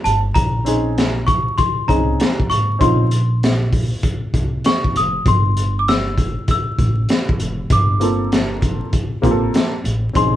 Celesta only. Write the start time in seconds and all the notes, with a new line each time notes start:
0.04 A5
0.34 A#5
1.27 C#6
1.58 C6
1.88 A#5
2.50 C#6
2.81 C6
4.66 C#6
4.97 D#6
5.28 C6
5.79 D6
5.88 E6
6.51 E6
7.72 D6
10.16 C6